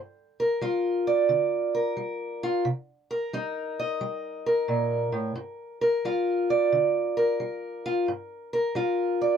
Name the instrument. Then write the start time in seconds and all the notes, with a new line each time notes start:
steel-string acoustic guitar
Already playing: G2
0.40 A#4
0.61 G3 F4
1.07 D5
1.29 D3
1.75 A#4
1.97 G3
2.43 F4
2.65 C3
3.11 A#4
3.33 G3 D#4
3.79 D#5
4.01 G3
4.46 A#4
4.68 A#2
5.12 A2
5.36 G2
5.81 A#4
6.05 G3 F4
6.50 D5
6.72 D3
7.17 A#4
7.40 G3
7.86 F4
8.08 G2
8.53 A#4
8.75 G3 F4
9.21 D5